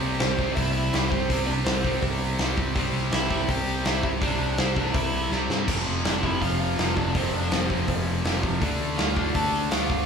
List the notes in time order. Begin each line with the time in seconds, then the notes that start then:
Already playing: C3 G3 C4
0.03 C2
0.20 C2 C4 C5, snare, open hi-hat
0.39 C3 G3 C4, kick
0.52 D5 E5
0.56 C2 E4, kick, open hi-hat
0.72 E4 E5
0.93 C2 C3 G3 C4, snare, open hi-hat
1.09 C2 C4 C5, kick
1.29 C2 C3 G3 C4, kick, open hi-hat
1.46 C2 D4 D5
1.65 C2 C4 C5, snare, open hi-hat
1.84 C3 G3 C4, kick
2.02 C2, kick, open hi-hat
2.39 C2 C3 G3 C4, snare, open hi-hat
2.58 C2, kick
2.75 C2 C3 G3 C4, kick, open hi-hat
2.93 C2
3.12 C2 E4 E5, snare, open hi-hat
3.30 C3 G3 C4, kick
3.49 C2 G4 G5, kick, open hi-hat
3.84 C2 C3 G3 C4 E4 E5, snare, open hi-hat
4.03 C2 E4 E5, kick
4.21 C2 C3 G3 C4 D4 D5, kick, open hi-hat
4.40 C2
4.58 C2 C4 C5, snare, open hi-hat
4.75 C3 G3 C4 D4 D5, kick
4.93 C2 E4 E5, kick, open hi-hat
5.31 C2 C3 G3 C4, snare
5.49 G2, snare
5.68 F1 F2 C3 F3, kick, splash, crash
5.87 F1
6.05 F1 D4 D5, snare, open hi-hat
6.23 F2 C3 F3 E4 E5, kick
6.41 F1 F4 F5, kick, open hi-hat
6.60 F4 F5
6.78 F1 F2 C3 F3, snare, open hi-hat
6.97 F1 D4 D5, kick
7.15 F1 F2 C3 F3 C4 C5, kick, open hi-hat
7.34 F1 D4 D5
7.51 F1 C4 C5, snare, open hi-hat
7.70 F2 C3 F3, kick
7.88 F1, kick, open hi-hat
8.24 F1 F2 C3 F3, snare, open hi-hat
8.43 F1, kick
8.60 D2 D3 A3 D4, kick, open hi-hat
8.80 D2
8.97 D2 F4 F5, snare, open hi-hat
9.16 D3 A3 D4, kick
9.35 D2 A4 A5, kick, open hi-hat
9.71 D2 D3 A3 D4 F4 F5, snare, open hi-hat
9.90 D2 F4 F5, kick